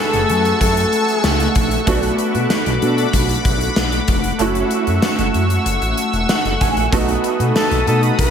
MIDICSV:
0, 0, Header, 1, 8, 480
1, 0, Start_track
1, 0, Key_signature, 3, "minor"
1, 0, Tempo, 631579
1, 1422, Time_signature, 4, 2, 24, 8
1, 6310, End_track
2, 0, Start_track
2, 0, Title_t, "Analog synth pad"
2, 0, Program_c, 0, 89
2, 0, Note_on_c, 0, 57, 78
2, 0, Note_on_c, 0, 78, 70
2, 0, Note_on_c, 0, 85, 69
2, 0, Note_on_c, 0, 88, 84
2, 1401, Note_off_c, 0, 88, 0
2, 1402, Note_off_c, 0, 85, 0
2, 1421, Note_on_c, 0, 83, 75
2, 1421, Note_on_c, 0, 86, 90
2, 3311, Note_off_c, 0, 57, 0
2, 3322, Note_off_c, 0, 83, 0
2, 3323, Note_off_c, 0, 86, 0
2, 3341, Note_on_c, 0, 57, 75
2, 3341, Note_on_c, 0, 85, 72
2, 3342, Note_on_c, 0, 88, 89
2, 5242, Note_off_c, 0, 85, 0
2, 5243, Note_off_c, 0, 88, 0
2, 5261, Note_on_c, 0, 87, 85
2, 5262, Note_on_c, 0, 83, 74
2, 6310, Note_off_c, 0, 57, 0
2, 6310, Note_off_c, 0, 78, 0
2, 6310, Note_off_c, 0, 83, 0
2, 6310, Note_off_c, 0, 87, 0
2, 6310, End_track
3, 0, Start_track
3, 0, Title_t, "Violin section"
3, 0, Program_c, 1, 48
3, 0, Note_on_c, 1, 81, 87
3, 455, Note_off_c, 1, 81, 0
3, 464, Note_on_c, 1, 81, 76
3, 1153, Note_off_c, 1, 81, 0
3, 5742, Note_on_c, 1, 81, 76
3, 5965, Note_off_c, 1, 81, 0
3, 5981, Note_on_c, 1, 81, 65
3, 6089, Note_off_c, 1, 81, 0
3, 6221, Note_on_c, 1, 83, 85
3, 6310, Note_off_c, 1, 83, 0
3, 6310, End_track
4, 0, Start_track
4, 0, Title_t, "Flugelhorn"
4, 0, Program_c, 2, 56
4, 0, Note_on_c, 2, 69, 93
4, 462, Note_off_c, 2, 69, 0
4, 466, Note_on_c, 2, 69, 85
4, 1154, Note_off_c, 2, 69, 0
4, 5748, Note_on_c, 2, 69, 83
4, 5968, Note_off_c, 2, 69, 0
4, 5988, Note_on_c, 2, 69, 83
4, 6095, Note_off_c, 2, 69, 0
4, 6231, Note_on_c, 2, 71, 92
4, 6310, Note_off_c, 2, 71, 0
4, 6310, End_track
5, 0, Start_track
5, 0, Title_t, "Analog polysynth"
5, 0, Program_c, 3, 90
5, 2141, Note_on_c, 3, 62, 93
5, 2142, Note_on_c, 3, 66, 94
5, 2142, Note_on_c, 3, 69, 107
5, 2345, Note_off_c, 3, 62, 0
5, 2346, Note_off_c, 3, 66, 0
5, 2346, Note_off_c, 3, 69, 0
5, 5982, Note_on_c, 3, 63, 100
5, 5983, Note_on_c, 3, 66, 97
5, 5984, Note_on_c, 3, 69, 103
5, 6186, Note_off_c, 3, 63, 0
5, 6186, Note_off_c, 3, 66, 0
5, 6187, Note_off_c, 3, 69, 0
5, 6310, End_track
6, 0, Start_track
6, 0, Title_t, "Grand piano"
6, 0, Program_c, 4, 0
6, 0, Control_c, 4, 64, 127
6, 0, Note_on_c, 4, 57, 69
6, 0, Note_on_c, 4, 61, 58
6, 0, Note_on_c, 4, 64, 62
6, 0, Note_on_c, 4, 66, 69
6, 1148, Note_off_c, 4, 57, 0
6, 1151, Note_off_c, 4, 61, 0
6, 1154, Note_off_c, 4, 64, 0
6, 1157, Note_off_c, 4, 66, 0
6, 1413, Note_on_c, 4, 57, 77
6, 1419, Note_on_c, 4, 59, 72
6, 1426, Note_on_c, 4, 62, 72
6, 1432, Control_c, 4, 64, 0
6, 1432, Note_on_c, 4, 66, 92
6, 1570, Control_c, 4, 64, 127
6, 3307, Note_off_c, 4, 57, 0
6, 3310, Note_off_c, 4, 59, 0
6, 3314, Note_off_c, 4, 62, 0
6, 3316, Note_off_c, 4, 66, 0
6, 3333, Note_on_c, 4, 57, 81
6, 3339, Note_on_c, 4, 61, 72
6, 3345, Note_on_c, 4, 64, 72
6, 3351, Note_on_c, 4, 66, 87
6, 3354, Control_c, 4, 64, 0
6, 3474, Control_c, 4, 64, 127
6, 4785, Note_on_c, 4, 78, 68
6, 5007, Note_off_c, 4, 78, 0
6, 5023, Note_on_c, 4, 80, 70
6, 5227, Note_off_c, 4, 57, 0
6, 5230, Note_off_c, 4, 61, 0
6, 5233, Note_off_c, 4, 64, 0
6, 5236, Note_off_c, 4, 66, 0
6, 5246, Note_off_c, 4, 80, 0
6, 5256, Note_on_c, 4, 57, 78
6, 5262, Note_on_c, 4, 59, 72
6, 5268, Note_on_c, 4, 63, 74
6, 5271, Control_c, 4, 64, 0
6, 5272, Note_on_c, 4, 66, 87
6, 5401, Control_c, 4, 64, 127
6, 6310, Note_off_c, 4, 57, 0
6, 6310, Note_off_c, 4, 59, 0
6, 6310, Note_off_c, 4, 63, 0
6, 6310, Note_off_c, 4, 66, 0
6, 6310, End_track
7, 0, Start_track
7, 0, Title_t, "Analog synth bass"
7, 0, Program_c, 5, 38
7, 102, Note_on_c, 5, 30, 98
7, 192, Note_off_c, 5, 30, 0
7, 223, Note_on_c, 5, 42, 92
7, 403, Note_off_c, 5, 42, 0
7, 462, Note_on_c, 5, 42, 103
7, 642, Note_off_c, 5, 42, 0
7, 942, Note_on_c, 5, 37, 95
7, 1122, Note_off_c, 5, 37, 0
7, 1184, Note_on_c, 5, 34, 92
7, 1363, Note_off_c, 5, 34, 0
7, 1422, Note_on_c, 5, 35, 112
7, 1602, Note_off_c, 5, 35, 0
7, 1782, Note_on_c, 5, 47, 104
7, 1872, Note_off_c, 5, 47, 0
7, 2022, Note_on_c, 5, 35, 95
7, 2112, Note_off_c, 5, 35, 0
7, 2141, Note_on_c, 5, 47, 103
7, 2321, Note_off_c, 5, 47, 0
7, 2383, Note_on_c, 5, 35, 99
7, 2563, Note_off_c, 5, 35, 0
7, 2622, Note_on_c, 5, 35, 94
7, 2802, Note_off_c, 5, 35, 0
7, 2862, Note_on_c, 5, 35, 97
7, 3042, Note_off_c, 5, 35, 0
7, 3102, Note_on_c, 5, 29, 96
7, 3282, Note_off_c, 5, 29, 0
7, 3342, Note_on_c, 5, 30, 112
7, 3522, Note_off_c, 5, 30, 0
7, 3703, Note_on_c, 5, 42, 101
7, 3792, Note_off_c, 5, 42, 0
7, 3942, Note_on_c, 5, 30, 91
7, 4032, Note_off_c, 5, 30, 0
7, 4061, Note_on_c, 5, 42, 96
7, 4241, Note_off_c, 5, 42, 0
7, 4300, Note_on_c, 5, 30, 98
7, 4391, Note_off_c, 5, 30, 0
7, 4421, Note_on_c, 5, 33, 86
7, 4512, Note_off_c, 5, 33, 0
7, 4661, Note_on_c, 5, 28, 90
7, 4751, Note_off_c, 5, 28, 0
7, 4902, Note_on_c, 5, 30, 85
7, 4992, Note_off_c, 5, 30, 0
7, 5025, Note_on_c, 5, 33, 93
7, 5114, Note_off_c, 5, 33, 0
7, 5139, Note_on_c, 5, 34, 95
7, 5230, Note_off_c, 5, 34, 0
7, 5263, Note_on_c, 5, 35, 108
7, 5443, Note_off_c, 5, 35, 0
7, 5620, Note_on_c, 5, 47, 98
7, 5711, Note_off_c, 5, 47, 0
7, 5861, Note_on_c, 5, 35, 90
7, 5951, Note_off_c, 5, 35, 0
7, 5980, Note_on_c, 5, 47, 93
7, 6161, Note_off_c, 5, 47, 0
7, 6222, Note_on_c, 5, 35, 102
7, 6310, Note_off_c, 5, 35, 0
7, 6310, End_track
8, 0, Start_track
8, 0, Title_t, "Drums"
8, 101, Note_on_c, 9, 42, 48
8, 177, Note_off_c, 9, 42, 0
8, 224, Note_on_c, 9, 42, 68
8, 300, Note_off_c, 9, 42, 0
8, 343, Note_on_c, 9, 42, 48
8, 419, Note_off_c, 9, 42, 0
8, 462, Note_on_c, 9, 36, 85
8, 464, Note_on_c, 9, 42, 90
8, 538, Note_off_c, 9, 36, 0
8, 540, Note_off_c, 9, 42, 0
8, 584, Note_on_c, 9, 42, 53
8, 660, Note_off_c, 9, 42, 0
8, 704, Note_on_c, 9, 42, 67
8, 780, Note_off_c, 9, 42, 0
8, 824, Note_on_c, 9, 42, 48
8, 900, Note_off_c, 9, 42, 0
8, 940, Note_on_c, 9, 54, 66
8, 941, Note_on_c, 9, 38, 112
8, 1016, Note_off_c, 9, 54, 0
8, 1017, Note_off_c, 9, 38, 0
8, 1062, Note_on_c, 9, 42, 49
8, 1138, Note_off_c, 9, 42, 0
8, 1180, Note_on_c, 9, 42, 78
8, 1183, Note_on_c, 9, 36, 98
8, 1256, Note_off_c, 9, 42, 0
8, 1259, Note_off_c, 9, 36, 0
8, 1302, Note_on_c, 9, 42, 48
8, 1378, Note_off_c, 9, 42, 0
8, 1421, Note_on_c, 9, 42, 86
8, 1422, Note_on_c, 9, 36, 108
8, 1497, Note_off_c, 9, 42, 0
8, 1498, Note_off_c, 9, 36, 0
8, 1541, Note_on_c, 9, 42, 45
8, 1617, Note_off_c, 9, 42, 0
8, 1660, Note_on_c, 9, 42, 66
8, 1736, Note_off_c, 9, 42, 0
8, 1783, Note_on_c, 9, 42, 53
8, 1859, Note_off_c, 9, 42, 0
8, 1901, Note_on_c, 9, 38, 115
8, 1902, Note_on_c, 9, 54, 63
8, 1977, Note_off_c, 9, 38, 0
8, 1978, Note_off_c, 9, 54, 0
8, 2023, Note_on_c, 9, 42, 49
8, 2099, Note_off_c, 9, 42, 0
8, 2144, Note_on_c, 9, 42, 70
8, 2220, Note_off_c, 9, 42, 0
8, 2264, Note_on_c, 9, 42, 52
8, 2340, Note_off_c, 9, 42, 0
8, 2382, Note_on_c, 9, 36, 86
8, 2384, Note_on_c, 9, 42, 93
8, 2458, Note_off_c, 9, 36, 0
8, 2460, Note_off_c, 9, 42, 0
8, 2502, Note_on_c, 9, 42, 54
8, 2578, Note_off_c, 9, 42, 0
8, 2622, Note_on_c, 9, 36, 98
8, 2622, Note_on_c, 9, 42, 67
8, 2698, Note_off_c, 9, 36, 0
8, 2698, Note_off_c, 9, 42, 0
8, 2742, Note_on_c, 9, 42, 47
8, 2818, Note_off_c, 9, 42, 0
8, 2859, Note_on_c, 9, 54, 60
8, 2860, Note_on_c, 9, 38, 109
8, 2935, Note_off_c, 9, 54, 0
8, 2936, Note_off_c, 9, 38, 0
8, 2981, Note_on_c, 9, 42, 49
8, 3057, Note_off_c, 9, 42, 0
8, 3098, Note_on_c, 9, 42, 75
8, 3102, Note_on_c, 9, 36, 96
8, 3174, Note_off_c, 9, 42, 0
8, 3178, Note_off_c, 9, 36, 0
8, 3220, Note_on_c, 9, 42, 47
8, 3296, Note_off_c, 9, 42, 0
8, 3338, Note_on_c, 9, 42, 88
8, 3414, Note_off_c, 9, 42, 0
8, 3459, Note_on_c, 9, 42, 42
8, 3535, Note_off_c, 9, 42, 0
8, 3576, Note_on_c, 9, 42, 68
8, 3652, Note_off_c, 9, 42, 0
8, 3701, Note_on_c, 9, 42, 55
8, 3777, Note_off_c, 9, 42, 0
8, 3818, Note_on_c, 9, 38, 116
8, 3819, Note_on_c, 9, 54, 64
8, 3894, Note_off_c, 9, 38, 0
8, 3895, Note_off_c, 9, 54, 0
8, 3941, Note_on_c, 9, 42, 50
8, 4017, Note_off_c, 9, 42, 0
8, 4061, Note_on_c, 9, 42, 73
8, 4137, Note_off_c, 9, 42, 0
8, 4180, Note_on_c, 9, 42, 53
8, 4256, Note_off_c, 9, 42, 0
8, 4301, Note_on_c, 9, 42, 93
8, 4377, Note_off_c, 9, 42, 0
8, 4422, Note_on_c, 9, 42, 53
8, 4498, Note_off_c, 9, 42, 0
8, 4541, Note_on_c, 9, 42, 67
8, 4617, Note_off_c, 9, 42, 0
8, 4662, Note_on_c, 9, 42, 44
8, 4738, Note_off_c, 9, 42, 0
8, 4781, Note_on_c, 9, 54, 63
8, 4782, Note_on_c, 9, 38, 115
8, 4857, Note_off_c, 9, 54, 0
8, 4858, Note_off_c, 9, 38, 0
8, 4904, Note_on_c, 9, 42, 47
8, 4980, Note_off_c, 9, 42, 0
8, 5022, Note_on_c, 9, 42, 75
8, 5024, Note_on_c, 9, 36, 94
8, 5098, Note_off_c, 9, 42, 0
8, 5100, Note_off_c, 9, 36, 0
8, 5144, Note_on_c, 9, 42, 47
8, 5220, Note_off_c, 9, 42, 0
8, 5263, Note_on_c, 9, 36, 112
8, 5265, Note_on_c, 9, 42, 87
8, 5339, Note_off_c, 9, 36, 0
8, 5341, Note_off_c, 9, 42, 0
8, 5383, Note_on_c, 9, 42, 44
8, 5459, Note_off_c, 9, 42, 0
8, 5501, Note_on_c, 9, 42, 68
8, 5577, Note_off_c, 9, 42, 0
8, 5625, Note_on_c, 9, 42, 53
8, 5701, Note_off_c, 9, 42, 0
8, 5743, Note_on_c, 9, 38, 112
8, 5745, Note_on_c, 9, 54, 62
8, 5819, Note_off_c, 9, 38, 0
8, 5821, Note_off_c, 9, 54, 0
8, 5861, Note_on_c, 9, 42, 49
8, 5937, Note_off_c, 9, 42, 0
8, 5984, Note_on_c, 9, 42, 73
8, 6060, Note_off_c, 9, 42, 0
8, 6102, Note_on_c, 9, 42, 51
8, 6178, Note_off_c, 9, 42, 0
8, 6222, Note_on_c, 9, 36, 93
8, 6223, Note_on_c, 9, 42, 95
8, 6298, Note_off_c, 9, 36, 0
8, 6299, Note_off_c, 9, 42, 0
8, 6310, End_track
0, 0, End_of_file